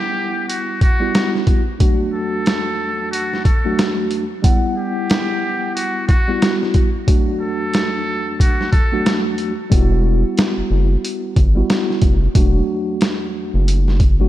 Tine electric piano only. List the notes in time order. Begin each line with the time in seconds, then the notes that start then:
Already playing: G3 B3 E4 F#5
1.00 G3 B3 E4 F#4
1.79 E2 F#3 A3 D4 F#4
3.64 E2 F#3 A3 D4 F#4
4.42 G3 B3 E4 F#5
6.28 G3 B3 E4 F#4
7.06 E2 F#3 A3 D4 F#4
8.92 E2 F#3 A3 D4 F#4
9.70 G3 B3 E4 F#4
11.55 G3 B3 E4 F#4
12.34 E2 F#3 A3 D4 F#4
14.19 E2 F#3 A3 D4 F#4